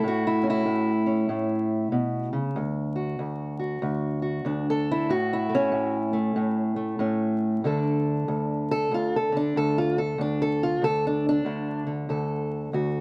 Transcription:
0.00 0.64 A2 medium
0.00 1.41 A3 soft
0.00 0.25 E4 medium
0.08 0.90 F#4 medium
0.27 0.47 E4 medium
0.43 1.05 C#4 soft
0.50 2.38 E4 loud
0.66 1.28 A2 medium
1.06 2.54 C#4 soft
1.29 1.92 A2 medium
1.92 2.32 B2 medium
2.33 2.56 C#3 medium
2.56 3.18 D2 medium
2.96 3.58 F#4 soft
3.19 3.81 D2 medium
3.59 4.21 F#4 soft
3.82 4.44 D2 medium
4.22 4.68 F#4 soft
4.45 5.09 D2 medium
4.45 5.07 D4 soft
4.70 5.10 A4 medium
4.91 5.12 E4 medium
5.09 5.71 A2 medium
5.09 5.95 F#4 medium
5.33 6.17 E4 medium
5.49 6.12 A3 soft
5.55 6.99 C#4 medium
5.72 6.35 A2 medium
6.13 6.75 A3 soft
6.36 6.98 A2 medium
6.76 7.61 A3 soft
6.99 7.64 A2 medium
6.99 7.61 C#4 soft
7.64 8.28 D2 medium
7.64 9.32 D3 soft
7.64 8.94 D4 soft
7.64 8.71 A4 soft
8.28 8.91 D2 medium
8.71 8.92 A4 loud
8.92 9.56 D2 medium
8.92 9.14 F4 medium
9.16 9.36 A4 medium
9.32 11.46 D3 soft
9.37 9.57 D4 medium
9.56 10.18 D2 medium
9.56 9.78 A4 medium
9.78 9.99 F4 medium
9.98 10.19 A4 medium
10.18 10.81 D2 medium
10.18 10.41 D4 medium
10.42 10.62 A4 medium
10.63 10.84 F4 medium
10.82 11.44 D2 medium
10.82 11.05 A4 loud
11.07 11.27 D4 medium
11.29 11.91 D4 loud
11.45 12.09 D2 medium
11.45 11.86 D3 medium
11.87 13.01 D3 soft
12.09 12.73 D2 medium
12.09 12.74 A4 soft
12.73 13.01 D2 medium
12.73 13.01 F#4 soft

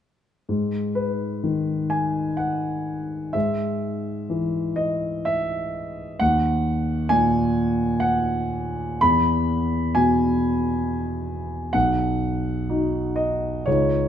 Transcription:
0.49 3.30 G#2 soft
0.95 1.91 B4 soft
1.44 3.34 D#3 soft
1.90 2.38 G#5 medium
2.37 3.33 F#5 medium
3.33 6.16 G#2 soft
3.33 4.77 E5 medium
4.30 6.20 E3 soft
4.76 5.26 D#5 medium
5.25 6.19 E5 medium
6.20 8.97 D#2 soft
6.20 7.10 F#5 medium
7.09 9.01 A#2 soft
7.09 8.00 G#5 medium
8.00 9.00 F#5 medium
9.01 11.71 E2 soft
9.01 9.95 B5 medium
9.95 11.75 B2 soft
9.95 10.86 G#5 medium
11.73 13.63 B1 soft
11.73 13.16 F#5 medium
12.69 13.63 D#4 soft
12.69 13.63 F#4 soft
13.16 13.66 D#5 medium
13.66 14.08 C#2 soft
13.66 14.08 D#4 soft
13.66 14.08 F4 soft
13.66 14.08 C#5 medium

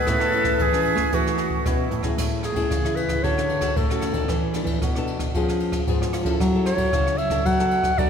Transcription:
0.00 0.10 G#4 loud
0.00 1.62 B4 loud
0.07 0.52 A2 loud
0.07 0.58 A3 medium
0.07 0.24 C#4 medium
0.07 0.24 E4 medium
0.07 0.63 A4 loud
0.07 0.24 B4 medium
0.07 kick medium
0.07 cross-stick medium
0.07 closed hi-hat medium
0.20 cross-stick medium
0.32 0.69 C#4 medium
0.32 0.69 E4 medium
0.32 0.70 B4 medium
0.32 closed hi-hat soft
0.44 kick medium
0.44 cross-stick medium
0.59 0.94 E3 medium
0.59 1.11 E3 medium
0.59 1.16 G#4 loud
0.59 kick medium
0.59 closed hi-hat medium
0.73 1.09 C#4 medium
0.73 1.10 E4 medium
0.73 1.10 B4 medium
0.73 cross-stick medium
0.85 closed hi-hat soft
0.95 1.09 A3 medium
0.95 kick medium
0.95 cross-stick medium
1.12 1.58 E3 medium
1.12 1.64 A3 medium
1.12 1.62 C#4 medium
1.12 1.62 E4 medium
1.12 1.68 F#4 medium
1.12 1.62 B4 medium
1.12 kick medium
1.12 closed hi-hat medium
1.27 cross-stick medium
1.38 cross-stick medium
1.38 closed hi-hat soft
1.50 kick medium
1.66 1.90 B2 medium
1.66 2.16 E3 medium
1.66 2.02 C#4 medium
1.66 2.19 E4 medium
1.66 2.02 E4 medium
1.66 2.02 B4 medium
1.66 kick medium
1.66 cross-stick medium
1.66 closed hi-hat medium
1.91 2.15 A2 medium
1.91 closed hi-hat medium
2.03 2.40 C#4 medium
2.03 2.40 E4 medium
2.03 2.40 G#4 medium
2.03 kick medium
2.03 cross-stick medium
2.03 closed hi-hat soft
2.18 2.52 A2 medium
2.18 2.69 A3 medium
2.18 kick medium
2.18 cross-stick medium
2.18 crash medium
2.43 2.97 G#4 medium
2.43 cross-stick medium
2.43 ride soft
2.54 2.67 A2 medium
2.54 2.79 C#4 medium
2.54 2.80 E4 medium
2.54 2.80 G#4 medium
2.54 kick medium
2.54 ride medium
2.71 3.16 C#3 medium
2.71 3.22 E3 medium
2.71 kick medium
2.71 cross-stick medium
2.71 ride soft
2.85 3.20 C#4 medium
2.85 3.20 E4 medium
2.85 3.20 G#4 medium
2.85 cross-stick medium
2.96 3.25 B4 medium
2.96 ride soft
3.09 kick medium
3.09 cross-stick medium
3.09 ride soft
3.23 3.69 D3 medium
3.23 3.74 D3 medium
3.23 3.49 C#4 medium
3.23 3.49 F#4 medium
3.23 3.49 A4 medium
3.23 3.78 C#5 medium
3.23 kick medium
3.23 ride soft
3.38 cross-stick medium
3.49 ride soft
3.61 3.84 C#4 medium
3.61 3.85 F#4 medium
3.61 3.85 A4 medium
3.61 kick medium
3.61 cross-stick medium
3.61 ride soft
3.76 4.10 A2 medium
3.76 4.27 A2 medium
3.76 4.56 A4 medium
3.76 kick medium
3.76 ride soft
3.90 4.12 C#4 medium
3.90 4.13 F#4 medium
3.90 4.13 A4 medium
3.90 cross-stick medium
4.01 cross-stick medium
4.01 ride medium
4.11 4.25 D#3 medium
4.11 4.54 B3 medium
4.11 4.55 D4 medium
4.11 kick medium
4.11 ride soft
4.16 4.55 A4 medium
4.28 4.63 E3 loud
4.28 4.80 E3 medium
4.28 kick medium
4.28 cross-stick medium
4.28 ride soft
4.54 4.91 B3 medium
4.54 4.91 D4 medium
4.54 4.91 A4 medium
4.54 cross-stick medium
4.54 ride soft
4.64 4.77 E3 medium
4.64 kick medium
4.64 ride soft
4.82 5.27 B2 medium
4.82 5.32 B2 medium
4.82 kick medium
4.82 cross-stick medium
4.82 ride soft
4.95 5.32 B3 medium
4.95 5.32 D4 medium
4.95 5.32 A4 medium
4.95 cross-stick medium
5.07 ride soft
5.19 kick medium
5.19 cross-stick medium
5.19 ride soft
5.34 5.79 F3 medium
5.34 5.85 F3 medium
5.34 5.84 B3 medium
5.34 5.84 C#4 medium
5.34 5.84 G#4 medium
5.34 kick medium
5.34 ride soft
5.49 cross-stick medium
5.60 ride soft
5.72 kick medium
5.72 cross-stick medium
5.72 ride soft
5.87 6.21 G#2 medium
5.87 6.38 F3 medium
5.87 6.24 B3 medium
5.87 6.24 C#4 medium
5.87 6.24 G#4 medium
5.87 kick medium
5.87 ride soft
6.02 cross-stick medium
6.13 cross-stick medium
6.13 ride medium
6.23 6.36 F3 medium
6.23 6.54 C#4 medium
6.23 6.54 E4 medium
6.23 6.54 A4 medium
6.23 kick medium
6.23 ride soft
6.40 6.74 F#3 loud
6.40 6.91 F#3 medium
6.40 kick medium
6.40 cross-stick medium
6.40 ride soft
6.55 6.90 C#4 medium
6.55 6.90 E4 medium
6.55 6.90 A4 medium
6.66 7.19 C#5 medium
6.66 cross-stick medium
6.66 ride soft
6.75 6.88 F#3 medium
6.75 kick medium
6.75 ride medium
6.93 7.38 C#3 medium
6.93 7.44 C#3 soft
6.93 7.18 C#4 medium
6.93 7.18 E4 soft
6.93 7.18 A4 medium
6.93 kick medium
6.93 cross-stick medium
6.93 ride soft
7.07 cross-stick medium
7.18 7.47 E5 medium
7.18 ride soft
7.30 7.54 B3 medium
7.30 7.54 D4 medium
7.30 7.54 A4 medium
7.30 kick medium
7.30 cross-stick medium
7.30 ride medium
7.46 7.90 F#3 medium
7.46 7.96 F#3 medium
7.46 8.00 F#5 medium
7.46 kick medium
7.46 ride medium
7.59 7.95 B3 medium
7.59 7.95 D4 medium
7.59 7.95 A4 medium
7.59 cross-stick medium
7.71 ride soft
7.83 kick medium
7.83 cross-stick medium
7.83 ride soft
7.98 8.10 F#3 medium
7.98 8.10 B3 medium
7.98 8.10 D4 medium
7.98 8.10 A4 medium
7.98 8.10 D5 medium
7.98 kick medium
7.98 ride medium

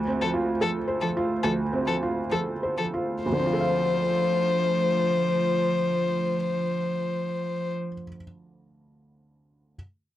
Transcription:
0.00 1.39 D2 medium
0.00 3.21 A3 medium
0.00 3.21 F4 medium
0.00 3.21 C5 medium
0.07 0.50 C4 medium
0.22 0.30 F3 medium
0.22 0.30 A4 medium
0.34 0.77 F4 medium
0.61 0.69 F3 medium
0.61 1.04 A4 medium
0.61 0.70 A4 medium
0.88 1.32 C5 medium
1.01 1.09 F3 medium
1.01 1.09 A4 medium
1.17 1.62 F4 medium
1.43 3.21 D2 medium
1.43 1.52 F3 medium
1.43 1.51 A4 medium
1.73 2.20 C4 medium
1.86 1.94 F3 medium
1.86 1.95 A4 medium
2.03 2.51 F4 medium
2.30 2.38 F3 medium
2.30 2.40 A4 medium
2.30 2.82 A4 medium
2.63 3.13 C5 medium
2.77 2.85 F3 medium
2.77 2.86 A4 medium
2.94 3.25 F4 medium
3.23 7.88 D2 medium
3.23 7.73 F3 medium
3.23 7.72 A3 medium
3.23 7.72 F4 medium
3.23 7.72 C5 medium
3.32 7.94 D3 medium
3.40 8.01 C4 medium
3.46 8.08 F4 medium
3.53 8.15 A4 medium
3.61 8.22 F5 medium

